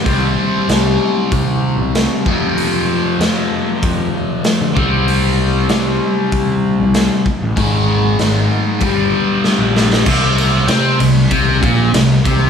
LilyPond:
<<
  \new Staff \with { instrumentName = "Overdriven electric guitar" } { \clef bass \time 4/4 \key c \minor \tempo 4 = 96 <c g c'>2.~ <c g c'>8 <f, c f>8~ | <f, c f>2.~ <f, c f>8 <c g c'>8~ | <c g c'>2.~ <c g c'>8 r8 | <aes, ees aes>2 <g, d g>2 |
c4 c'8 c8 c8 bes,8 c8 c8 | }
  \new Staff \with { instrumentName = "Picked electric bass" } { \clef bass \time 4/4 \key c \minor c,8 r8 c,8 r8 c8. c,8 r16 f,8~ | f,4 f,8 r8 f,8 r8. d16 c,8~ | c,4 c,8 r8 c8. c,8 r8 a,,16 | aes,,4 aes,,8 r8 g,,8 r8. bes,,8. |
c,4 c8 c,8 c,8 bes,,8 c,8 c,8 | }
  \new DrumStaff \with { instrumentName = "Drums" } \drummode { \time 4/4 <hho bd>4 <hho sn>4 <hho bd>4 <hho sn>8 bd8 | hho4 <hho sn>4 <hho bd>4 <hho sn>8 bd8 | hho4 <hho sn>4 <hho bd>4 <hho sn>8 bd8 | <hho bd>4 <hho sn>4 <hho bd>4 sn8 sn16 sn16 |
<cymc bd>8 cymr8 <cymr sn>8 cymr8 <bd cymr>8 <bd cymr>8 <cymr sn>8 <bd cymr>8 | }
>>